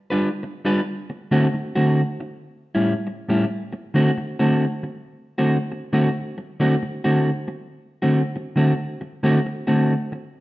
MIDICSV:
0, 0, Header, 1, 3, 480
1, 0, Start_track
1, 0, Tempo, 660793
1, 637, Time_signature, 4, 2, 24, 8
1, 7557, End_track
2, 0, Start_track
2, 0, Title_t, "Clean electric guitar"
2, 0, Program_c, 0, 27
2, 75, Note_on_c, 0, 71, 77
2, 83, Note_on_c, 0, 65, 80
2, 85, Note_on_c, 0, 62, 73
2, 87, Note_on_c, 0, 55, 62
2, 205, Note_off_c, 0, 71, 0
2, 208, Note_off_c, 0, 65, 0
2, 210, Note_off_c, 0, 62, 0
2, 211, Note_off_c, 0, 55, 0
2, 471, Note_on_c, 0, 55, 76
2, 473, Note_on_c, 0, 62, 87
2, 478, Note_on_c, 0, 65, 87
2, 480, Note_on_c, 0, 71, 87
2, 579, Note_off_c, 0, 55, 0
2, 580, Note_off_c, 0, 62, 0
2, 582, Note_off_c, 0, 65, 0
2, 584, Note_off_c, 0, 71, 0
2, 954, Note_on_c, 0, 50, 88
2, 955, Note_on_c, 0, 57, 91
2, 959, Note_on_c, 0, 66, 100
2, 961, Note_on_c, 0, 60, 94
2, 1061, Note_off_c, 0, 50, 0
2, 1061, Note_off_c, 0, 57, 0
2, 1063, Note_off_c, 0, 66, 0
2, 1064, Note_off_c, 0, 60, 0
2, 1275, Note_on_c, 0, 66, 89
2, 1278, Note_on_c, 0, 60, 74
2, 1281, Note_on_c, 0, 57, 72
2, 1284, Note_on_c, 0, 50, 70
2, 1456, Note_off_c, 0, 66, 0
2, 1458, Note_off_c, 0, 60, 0
2, 1459, Note_off_c, 0, 57, 0
2, 1461, Note_off_c, 0, 50, 0
2, 1995, Note_on_c, 0, 64, 76
2, 1998, Note_on_c, 0, 61, 68
2, 2001, Note_on_c, 0, 55, 65
2, 2002, Note_on_c, 0, 45, 61
2, 2125, Note_off_c, 0, 64, 0
2, 2127, Note_off_c, 0, 61, 0
2, 2128, Note_off_c, 0, 45, 0
2, 2128, Note_off_c, 0, 55, 0
2, 2386, Note_on_c, 0, 45, 79
2, 2391, Note_on_c, 0, 55, 82
2, 2395, Note_on_c, 0, 61, 85
2, 2397, Note_on_c, 0, 64, 80
2, 2497, Note_off_c, 0, 45, 0
2, 2500, Note_off_c, 0, 55, 0
2, 2501, Note_off_c, 0, 61, 0
2, 2502, Note_off_c, 0, 64, 0
2, 2863, Note_on_c, 0, 50, 82
2, 2868, Note_on_c, 0, 57, 79
2, 2873, Note_on_c, 0, 66, 99
2, 2874, Note_on_c, 0, 60, 90
2, 2975, Note_off_c, 0, 50, 0
2, 2978, Note_off_c, 0, 57, 0
2, 2981, Note_off_c, 0, 60, 0
2, 2981, Note_off_c, 0, 66, 0
2, 3192, Note_on_c, 0, 66, 82
2, 3193, Note_on_c, 0, 60, 83
2, 3197, Note_on_c, 0, 50, 67
2, 3199, Note_on_c, 0, 57, 75
2, 3374, Note_off_c, 0, 66, 0
2, 3375, Note_off_c, 0, 60, 0
2, 3377, Note_off_c, 0, 50, 0
2, 3378, Note_off_c, 0, 57, 0
2, 3909, Note_on_c, 0, 66, 81
2, 3912, Note_on_c, 0, 60, 78
2, 3914, Note_on_c, 0, 57, 73
2, 3916, Note_on_c, 0, 50, 67
2, 4042, Note_off_c, 0, 66, 0
2, 4043, Note_off_c, 0, 60, 0
2, 4045, Note_off_c, 0, 50, 0
2, 4045, Note_off_c, 0, 57, 0
2, 4306, Note_on_c, 0, 50, 79
2, 4308, Note_on_c, 0, 57, 88
2, 4313, Note_on_c, 0, 60, 82
2, 4313, Note_on_c, 0, 66, 93
2, 4417, Note_off_c, 0, 50, 0
2, 4418, Note_off_c, 0, 57, 0
2, 4420, Note_off_c, 0, 60, 0
2, 4420, Note_off_c, 0, 66, 0
2, 4793, Note_on_c, 0, 50, 86
2, 4795, Note_on_c, 0, 57, 79
2, 4800, Note_on_c, 0, 60, 86
2, 4800, Note_on_c, 0, 66, 96
2, 4900, Note_off_c, 0, 50, 0
2, 4901, Note_off_c, 0, 57, 0
2, 4904, Note_off_c, 0, 60, 0
2, 4904, Note_off_c, 0, 66, 0
2, 5116, Note_on_c, 0, 66, 86
2, 5119, Note_on_c, 0, 60, 80
2, 5122, Note_on_c, 0, 57, 66
2, 5125, Note_on_c, 0, 50, 69
2, 5296, Note_off_c, 0, 66, 0
2, 5298, Note_off_c, 0, 60, 0
2, 5299, Note_off_c, 0, 57, 0
2, 5301, Note_off_c, 0, 50, 0
2, 5827, Note_on_c, 0, 66, 76
2, 5831, Note_on_c, 0, 60, 76
2, 5834, Note_on_c, 0, 57, 71
2, 5837, Note_on_c, 0, 50, 67
2, 5960, Note_off_c, 0, 66, 0
2, 5962, Note_off_c, 0, 60, 0
2, 5964, Note_off_c, 0, 57, 0
2, 5966, Note_off_c, 0, 50, 0
2, 6216, Note_on_c, 0, 50, 81
2, 6222, Note_on_c, 0, 57, 86
2, 6226, Note_on_c, 0, 60, 80
2, 6226, Note_on_c, 0, 66, 94
2, 6331, Note_off_c, 0, 50, 0
2, 6334, Note_off_c, 0, 57, 0
2, 6336, Note_off_c, 0, 60, 0
2, 6336, Note_off_c, 0, 66, 0
2, 6706, Note_on_c, 0, 50, 89
2, 6709, Note_on_c, 0, 57, 92
2, 6713, Note_on_c, 0, 60, 91
2, 6715, Note_on_c, 0, 66, 94
2, 6816, Note_off_c, 0, 50, 0
2, 6817, Note_off_c, 0, 57, 0
2, 6820, Note_off_c, 0, 60, 0
2, 6821, Note_off_c, 0, 66, 0
2, 7026, Note_on_c, 0, 66, 78
2, 7030, Note_on_c, 0, 60, 75
2, 7032, Note_on_c, 0, 57, 78
2, 7034, Note_on_c, 0, 50, 63
2, 7210, Note_off_c, 0, 66, 0
2, 7213, Note_off_c, 0, 60, 0
2, 7214, Note_off_c, 0, 50, 0
2, 7214, Note_off_c, 0, 57, 0
2, 7557, End_track
3, 0, Start_track
3, 0, Title_t, "Muted clean electric guitar strokes"
3, 313, Note_on_c, 9, 29, 54
3, 386, Note_off_c, 9, 29, 0
3, 798, Note_on_c, 9, 29, 53
3, 871, Note_off_c, 9, 29, 0
3, 1117, Note_on_c, 9, 29, 48
3, 1190, Note_off_c, 9, 29, 0
3, 1597, Note_on_c, 9, 29, 44
3, 1669, Note_off_c, 9, 29, 0
3, 2228, Note_on_c, 9, 29, 53
3, 2301, Note_off_c, 9, 29, 0
3, 2706, Note_on_c, 9, 29, 52
3, 2779, Note_off_c, 9, 29, 0
3, 3033, Note_on_c, 9, 29, 47
3, 3106, Note_off_c, 9, 29, 0
3, 3511, Note_on_c, 9, 29, 48
3, 3584, Note_off_c, 9, 29, 0
3, 4152, Note_on_c, 9, 29, 52
3, 4225, Note_off_c, 9, 29, 0
3, 4634, Note_on_c, 9, 29, 52
3, 4706, Note_off_c, 9, 29, 0
3, 4959, Note_on_c, 9, 29, 48
3, 5032, Note_off_c, 9, 29, 0
3, 5431, Note_on_c, 9, 29, 45
3, 5503, Note_off_c, 9, 29, 0
3, 6071, Note_on_c, 9, 29, 53
3, 6143, Note_off_c, 9, 29, 0
3, 6545, Note_on_c, 9, 29, 48
3, 6618, Note_off_c, 9, 29, 0
3, 6873, Note_on_c, 9, 29, 43
3, 6945, Note_off_c, 9, 29, 0
3, 7353, Note_on_c, 9, 29, 52
3, 7426, Note_off_c, 9, 29, 0
3, 7557, End_track
0, 0, End_of_file